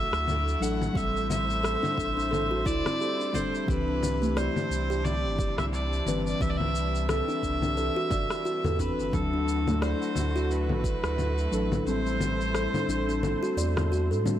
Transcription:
Already playing: D3 F#3 A3 D4 E4 F#4 A4 E5
0.12 D2, cross-stick, shaker
0.28 low conga, shaker
0.48 shaker
0.60 A1 F#3 D4 A4 F#5, shaker
0.82 low conga, shaker
0.93 A1 G3 C4 A4 C5 E5, kick
0.97 A4, shaker
1.17 shaker
1.30 E5, low conga, shaker
1.50 shaker
1.63 A4, cross-stick, shaker
1.83 D4, low conga, shaker
1.98 A1 D4, kick, shaker
2.17 D4, shaker
2.31 A4, low conga, shaker
2.51 F#4
2.65 C2 E4 D5, kick, shaker
2.85 C4, cross-stick, low conga, shaker
3.00 G4, shaker
3.20 D4, shaker
3.33 G3 C4 D4 A4 C5, kick, low conga, shaker
3.55 shaker
3.66 C2 C3 E3 G3 C4 D4 B4, kick, shaker
3.70 G4
3.88 D4
4.03 low conga, shaker
4.22 A3, shaker
4.37 C5 D5, cross-stick, shaker
4.56 low conga, shaker
4.70 C2, shaker
4.90 G4, shaker
5.04 D5, low conga, shaker
5.24 G1
5.39 kick, shaker
5.57 C2 E5, cross-stick, low conga, shaker
5.73 D5, shaker
5.93 shaker
6.06 G1 E3 C4 B4, low conga, shaker
6.26 D5, shaker
6.39 C2 E3 C4 E5, kick, shaker
6.43 B4
6.50 D5
6.57 E5, low conga
6.75 shaker
6.95 shaker
7.09 A4 E5, cross-stick, low conga, shaker
7.28 D4, shaker
7.43 C2 D4, kick, shaker
7.62 D4, low conga, shaker
7.77 A4, shaker
7.96 F#4
8.11 G1 D5, kick, low conga, shaker
8.30 cross-stick, shaker
8.45 F#4, shaker
8.64 E2 A4, low conga, shaker
8.79 E3 C4 D4 B4, kick, shaker
8.99 G1, shaker
9.12 D2 D3 F#3 A3 D4 E4 F#4 A4, kick, low conga, shaker
9.34 D4
9.48 shaker
9.67 A3, low conga, shaker
9.82 C5 D5, cross-stick, shaker
10.02 shaker
10.15 D2, low conga, shaker
10.36 F#4, shaker
10.51 B4, shaker
10.69 A1, low conga
10.84 kick, shaker
11.04 D2, cross-stick, shaker
11.18 low conga, shaker
11.38 shaker
11.51 A1 F#3 D4 A4, shaker
11.72 low conga, shaker
11.85 A1 G3 C4 A4 C5, shaker
11.89 A4
12.06 shaker
12.21 low conga, shaker
12.41 shaker
12.54 A4, cross-stick, shaker
12.74 D4, low conga, shaker
12.88 A1 D4, shaker
13.09 D4, shaker
13.23 A4, low conga, shaker
13.43 F#4, shaker
13.57 E2 D5, shaker
13.77 cross-stick, low conga, shaker
13.92 F#4, shaker
14.11 A2 A4, shaker
14.25 G3 C4 D4 A4, low conga, shaker

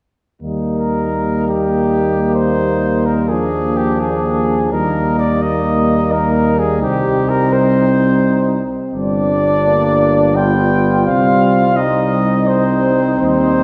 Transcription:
0.42 D#2 G3 A#3 D#4
0.77 A#4
1.48 G4
2.34 C5
3.06 A#4
3.29 F3 D4 G#4
3.77 G4
4.00 G#4
4.72 D#2 G3 A#3 D#4 A#4
5.19 D5
5.42 D#5
6.12 A#4
6.59 G#4
6.82 C2 C4 G4
7.29 A#4
7.53 C5
8.93 G1 G3 D4 D5
9.63 A#3
10.36 B3 F4 G5
11.06 C2 C4 F5
11.76 D#4 D#5
12.47 C5
13.19 D#2 G3 C5

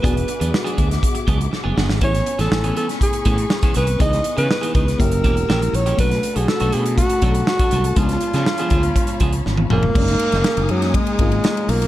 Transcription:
Already playing: B4
0.02 E1 F#3 B3 D4 F#4 G#4 E5 F#5 D6, kick, closed hi-hat
0.15 muted clean electric guitar stroke, closed hi-hat
0.28 muted clean electric guitar stroke, closed hi-hat
0.40 E2 F#3 B3 D4 G#4, closed hi-hat
0.53 muted clean electric guitar stroke, snare
0.65 F#3 B3 D4 G#4, closed hi-hat
0.77 D2 F#3 B3 D4 G#4, kick, closed hi-hat
0.90 muted clean electric guitar stroke, snare, closed hi-hat
1.03 kick, closed hi-hat
1.15 muted clean electric guitar stroke, closed hi-hat
1.27 C#2 F#3 B3 D4 G#4, kick, closed hi-hat
1.39 muted clean electric guitar stroke, closed hi-hat
1.52 muted clean electric guitar stroke, snare
1.64 F#1 F#3 B3 D4 G#4
1.76 G1 F#3 B3 D4 G#4, snare
1.89 G#1, muted clean electric guitar stroke, snare
2.01 A1 E3 A3 B3 C#4 E4 G#4 C#5 G#5 B5 C#6, kick, closed hi-hat
2.14 muted clean electric guitar stroke, snare, closed hi-hat
2.26 muted clean electric guitar stroke, closed hi-hat
2.39 A1 E3 B3 C#4 G#4 A4, snare, closed hi-hat
2.51 A1, snare
2.64 E3 B3 C#4 G#4, closed hi-hat
2.76 E3 B3 C#4 G#4 A4, closed hi-hat
2.88 muted clean electric guitar stroke, snare, closed hi-hat
3.01 G#4, kick, closed hi-hat
3.13 muted clean electric guitar stroke, closed hi-hat
3.25 A2 E3 B3 C#4 G#4, kick, closed hi-hat
3.38 muted clean electric guitar stroke, closed hi-hat
3.50 muted clean electric guitar stroke, snare
3.63 E3 B3 C#4 G#4, kick, closed hi-hat
3.74 C2 E3 B3 C#4 G#4 B4, closed hi-hat
3.87 muted clean electric guitar stroke, closed hi-hat
3.98 C#2 E3 B3 D#4 E4 G#4 B4 D#5 D#6, kick, closed hi-hat
4.12 muted clean electric guitar stroke, snare, closed hi-hat
4.24 muted clean electric guitar stroke, closed hi-hat
4.37 C#3 E3 B3 D#4 G#4 B4, closed hi-hat
4.50 muted clean electric guitar stroke, snare
4.61 E3 B3 D#4 G#4, closed hi-hat
4.74 C#2 E3 B3 D#4 G#4 B4, kick, closed hi-hat
4.87 muted clean electric guitar stroke, snare, closed hi-hat
4.98 F#1 A#3 C#4 E4 G4 A#4 F#5 A#5 E6, kick, closed hi-hat
5.12 muted clean electric guitar stroke, closed hi-hat
5.24 E1 E3 A#3 C#4 G4, kick, closed hi-hat
5.37 muted clean electric guitar stroke, closed hi-hat
5.49 A#1 E3 A#3 C#4 G4, snare
5.62 muted clean electric guitar stroke, closed hi-hat
5.73 A#1 C#5, muted clean electric guitar stroke, closed hi-hat
5.86 E3 A#3 C#4 G4, closed hi-hat
5.97 B1 F#3 A3 C#4 D4 F#4 A4 B4 A5 B5, kick, closed hi-hat
6.01 F#4
6.11 muted clean electric guitar stroke, snare, closed hi-hat
6.23 muted clean electric guitar stroke, closed hi-hat
6.36 B1 F#3 A3 D4 F#4 G#4, closed hi-hat
6.48 A4, snare
6.60 B1 F#3 A3 D4 F#4, closed hi-hat
6.73 B2 F#3 A3 D4 F#4 G#4, closed hi-hat
6.86 muted clean electric guitar stroke, closed hi-hat
6.98 F#4, kick, closed hi-hat
7.09 muted clean electric guitar stroke, closed hi-hat
7.22 B1 F#3 A3 C#4 D4 F#4 A4, kick, closed hi-hat
7.35 muted clean electric guitar stroke, closed hi-hat
7.47 F#4, muted clean electric guitar stroke, snare
7.59 F#3 A3 D4 F#4, kick, closed hi-hat
7.71 C2 F#3 A3 D4 F#4, closed hi-hat
7.84 muted clean electric guitar stroke, closed hi-hat
7.96 C#2 F3 G#3 B3 D4 F4 G#4 C#5 F5 B5, kick, closed hi-hat
8.09 muted clean electric guitar stroke, snare, closed hi-hat
8.21 muted clean electric guitar stroke, closed hi-hat
8.33 C#3 F3 B3 D4 G#4, snare, closed hi-hat
8.46 snare
8.58 F3 B3 D4 G#4, closed hi-hat
8.70 D2 F3 B3 D4 G#4, kick, closed hi-hat
8.83 muted clean electric guitar stroke, closed hi-hat
8.96 kick, closed hi-hat
9.07 muted clean electric guitar stroke, closed hi-hat
9.20 C#2 F3 B3 D4 G#4, kick, closed hi-hat
9.33 muted clean electric guitar stroke, closed hi-hat
9.46 G#1, muted clean electric guitar stroke, snare
9.57 muted clean electric guitar stroke, high tom
9.70 F1 F3 A#3 B3 D4 G#4, mid tom
9.83 muted clean electric guitar stroke, floor tom
9.94 F#1 G#3 A#3 C#4 D4 G#4 G#5 A#5 D#6, kick, crash
10.02 D#4
10.08 snare, ride
10.19 ride
10.32 F#1, snare, ride
10.44 snare, ride
10.57 F#1, ride
10.69 F#2 F#3, ride
10.82 snare, ride
10.94 G#3, kick, ride
11.07 ride
11.19 G#1 G#3 A#3 C#4 F4, kick, ride
11.32 ride
11.44 snare, ride
11.57 ride
11.69 B1 A#3, open hi-hat, ride
11.82 ride

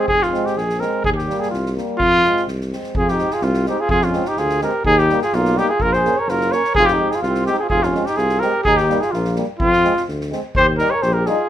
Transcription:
0.08 F1 G#4, kick
0.22 F4, snare
0.32 G#3 C4, snare
0.46 G4, snare
0.56 A#1 G#4, snare
0.69 snare
0.79 G#3 C4 A#4, snare
1.04 D#2 G#4, kick
1.16 G4, snare
1.27 G3 A#3, snare
1.40 G#4, snare
1.50 C2 F4, snare
1.65 snare
1.75 G3 A#3, snare
1.98 F2 F4, kick
2.23 G#3 C4, snare
2.36 snare
2.47 C2, snare
2.60 snare
2.71 G#3 C4, snare
2.83 snare
2.95 F2 F4 G#4, kick
3.08 D#4 G4, snare
3.18 G#3 C4, snare
3.30 F4 G#4, snare
3.41 C2 C4 F4, snare
3.53 snare
3.65 G#3 C4 D#4 G4, snare
3.80 F4 G#4
3.89 F2 F4 G#4, kick
4.01 C#4 F4, snare
4.13 G#3 C4, snare
4.25 D#4 G4, snare
4.37 D2 F4 G#4, snare
4.49 snare
4.61 G#3 C4 G4 A#4, snare
4.84 D#2 D#4 G#4, kick
4.97 D#4 G4, snare
5.09 G3 A#3, snare
5.21 F4 G#4, snare
5.32 B1 A#3 F4, snare
5.45 snare
5.56 G3 A#3 D#4 G4, snare
5.69 F4 G#4
5.80 A#1 F4 A#4, kick
5.92 G#4 C5, snare
6.03 A#3 C#4, snare
6.17 A#4 C#5
6.26 F#1 F4 A#4, snare
6.40 snare
6.52 A#3 C#4 A#4 C#5, snare
6.64 snare
6.75 F1 F4 G#4, kick
6.86 G4, snare
6.92 D#4
6.99 G#3 C4
7.11 G#4, snare
7.15 F4
7.22 C2 F4, snare
7.27 C4
7.34 snare
7.46 G#3 C4 G4, snare
7.52 D#4
7.59 F4 G#4
7.69 F1 F4 G#4, kick
7.82 C#4 F4, snare
7.94 G#3 C4, snare
8.06 D#4 G4, snare
8.16 C2 F4 G#4, snare
8.29 snare
8.40 G#3 C4 G4 A#4, snare
8.64 D#2 D#4 G#4, kick
8.77 G4, snare
8.81 D#4
8.88 G3 A#3, snare
9.00 F4 G#4, snare
9.11 A#1 A#3 F4, snare
9.24 snare
9.35 G3 A#3, snare
9.59 F2 C4 F4, kick
9.72 snare
9.83 G#3 C4, snare
9.96 snare
10.08 D2, snare
10.20 snare
10.31 G#3 C4, snare
10.55 D#2 G4 C5, kick
10.78 G3 D#4 G4 A#4, snare
10.90 A#4 C#5
11.02 A#1 G4 C5, snare
11.13 G4 A#4
11.25 G3 D#4 F4 G#4, snare

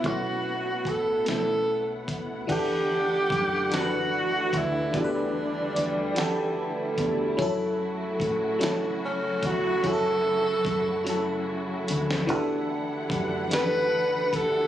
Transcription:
Already playing: B2 A3 B3 C#4 E4 F#4 F#5
0.03 B1 B2 A3 C#4, kick, closed hi-hat
0.07 E4 F#4
0.85 A1 A4, kick, closed hi-hat
1.25 B2 A3 C#4 A4, snare, closed hi-hat
1.29 B1 E4
2.08 D2, kick, closed hi-hat
2.47 E2 D3 E3 A3 D4 E4 G4 F#5, kick, closed hi-hat, crash
2.51 G4 A4
3.30 F#2, kick, closed hi-hat
3.69 E3 D4 F#4 A4, closed hi-hat
3.74 F#4, snare
3.80 B4
4.53 D2, kick, closed hi-hat
4.58 E4
4.93 E2 E3 G3 D4 F#4 G4, kick, closed hi-hat
4.97 D4 A4
5.04 B4
5.76 E2, closed hi-hat
6.15 E3 D4 F#4 G4, snare, closed hi-hat
6.20 A4
6.98 E2, kick, closed hi-hat
7.37 F#2 C#3 F#3 C#4 E4 F#4, kick, closed hi-hat
7.42 A4
8.20 A2, kick, closed hi-hat
8.59 F#3 C#4 E4, closed hi-hat
8.63 A4, snare
9.05 C#4
9.43 E2 F#4, kick, closed hi-hat
9.82 F#2 F#3 C#4 E4, kick, closed hi-hat
9.87 G#4 A4
9.93 A4
10.65 F#2, kick, closed hi-hat
11.04 F#3 C#4 E4, closed hi-hat
11.09 A4
11.88 D2, closed hi-hat
12.11 snare
12.27 E2 D3 E3 A3 D4 F#4 G4 F#5, kick, closed hi-hat
12.31 A4
13.10 F#2, kick, closed hi-hat
13.49 E3 D4 F#4 G4, closed hi-hat
13.53 A4 B4, snare
14.33 D2 A4, kick, closed hi-hat

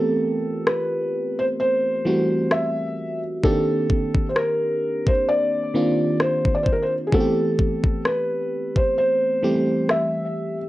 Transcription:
Already playing: E3 A3 B3 C4 F4 G4 A4 A#4
0.67 B4, cross-stick
1.39 C5
1.60 C5
2.05 E3 G3 A3 C4 F#4
2.51 E5, cross-stick
3.43 D#3 A#3 C4 D4 G4 A4, kick
3.90 kick
4.14 kick
4.29 C5
4.36 A#4, cross-stick
5.07 C5, kick
5.29 D5
5.74 D#3 A#3 C4 D4 F4
6.20 C5, cross-stick
6.45 kick
6.55 D5
6.63 C5, kick
6.73 A#4
6.82 C5
7.07 G#4
7.12 E3 A3 B3 C4 F#4 A4, kick
7.20 G4
7.59 kick
7.84 kick
8.05 B4, cross-stick
8.76 C5, kick
8.98 C5
9.43 E3 G3 A3 C4 G4
9.89 E5, cross-stick

